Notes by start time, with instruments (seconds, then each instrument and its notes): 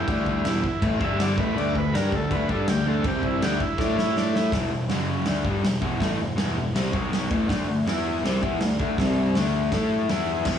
0.08 picked electric bass D2, overdriven electric guitar D3 A3 D4, transistor combo organ G3 E4, kick, crash
0.26 transistor combo organ G3, kick
0.31 transistor combo organ E4
0.44 picked electric bass E1, overdriven electric guitar E2 B2 E3, transistor combo organ G3 E4, snare, crash
0.64 transistor combo organ E4, muted picked electric bass stroke, muted overdriven electric guitar stroke, kick
0.82 picked electric bass A1, overdriven electric guitar A2 E3 A3, kick, crash
0.99 picked electric bass G1, overdriven electric guitar G2 D3 G3, kick
1.04 transistor combo organ E5
1.20 snare, crash
1.24 transistor combo organ D5
1.37 picked electric bass A1, overdriven electric guitar A2 E3 A3, transistor combo organ B4, kick
1.55 picked electric bass D2, overdriven electric guitar D3 A3 D4, crash
1.59 transistor combo organ D5
1.74 picked electric bass D2, overdriven electric guitar D3 A3, transistor combo organ B4, kick
1.93 picked electric bass G2, overdriven electric guitar G3 D4 G4, transistor combo organ A#4, snare, crash
2.12 picked electric bass D2, overdriven electric guitar D3 A3, transistor combo organ A4, kick
2.30 picked electric bass D2, overdriven electric guitar D3 A3 D4, transistor combo organ B4, kick, crash
2.48 picked electric bass G2, overdriven electric guitar G3 D4 G4, transistor combo organ A4, kick
2.67 picked electric bass D2, overdriven electric guitar D3 A3, transistor combo organ G4, snare, crash
2.86 picked electric bass D2, overdriven electric guitar D3 A3 D4, transistor combo organ A4
3.03 picked electric bass C2, overdriven electric guitar C3 G3 C4, kick, crash
3.08 transistor combo organ G4
3.23 transistor combo organ E4, kick
3.42 picked electric bass D2, overdriven electric guitar D3 A3 D4, transistor combo organ G4, snare, crash
3.60 transistor combo organ E4, muted picked electric bass stroke, muted overdriven electric guitar stroke, kick
3.78 picked electric bass A2, overdriven electric guitar A3 E4 A4, transistor combo organ D4, kick, snare
3.98 transistor combo organ E4, snare
4.17 transistor combo organ D4, snare
4.35 transistor combo organ E4, snare
4.52 picked electric bass E1, overdriven electric guitar E2 B2 E3, kick, snare, open hi-hat
4.71 picked electric bass E1, overdriven electric guitar E2 B2
4.89 picked electric bass F#1, overdriven electric guitar F#2 C#3 F#3, snare, open hi-hat
5.25 picked electric bass D2, overdriven electric guitar D3 A3 D4, snare, open hi-hat
5.44 picked electric bass G1, overdriven electric guitar G2 D3 G3, kick
5.63 picked electric bass E1, overdriven electric guitar E2 B2, snare, open hi-hat
5.81 picked electric bass E1, overdriven electric guitar E2 B2 E3, kick
6.00 picked electric bass A1, overdriven electric guitar A2 E3 A3, kick, snare, open hi-hat
6.19 picked electric bass E1, overdriven electric guitar E2 B2
6.36 picked electric bass E1, overdriven electric guitar E2 B2 E3, snare, open hi-hat
6.55 picked electric bass E1, overdriven electric guitar E2 B2
6.74 picked electric bass C2, overdriven electric guitar C3 G3 C4, snare, open hi-hat
6.93 picked electric bass B1, overdriven electric guitar B2 F#3 B3, kick
7.13 snare, open hi-hat
7.30 picked electric bass A1, overdriven electric guitar A2 E3 A3, kick
7.48 picked electric bass D2, overdriven electric guitar D3 A3 D4, kick, snare, open hi-hat
7.66 picked electric bass D2, overdriven electric guitar D3 A3
7.85 picked electric bass E2, overdriven electric guitar E3 B3 E4, snare, open hi-hat
8.22 picked electric bass C2, overdriven electric guitar C3 G3 C4, snare, open hi-hat
8.42 picked electric bass E2, overdriven electric guitar E3 B3 E4, kick
8.59 picked electric bass D2, overdriven electric guitar D3 A3, snare, open hi-hat
8.79 picked electric bass D2, overdriven electric guitar D3 A3 D4, kick
8.98 picked electric bass C2, overdriven electric guitar C3 G3 C4, kick, snare, open hi-hat
9.34 picked electric bass D2, overdriven electric guitar D3 A3 D4, snare, open hi-hat
9.72 picked electric bass A2, overdriven electric guitar A3 E4 A4, kick, snare, open hi-hat
10.09 picked electric bass E2, overdriven electric guitar E3 B3 E4, snare, open hi-hat
10.45 picked electric bass E1, overdriven electric guitar E2 B2 E3, kick, snare, crash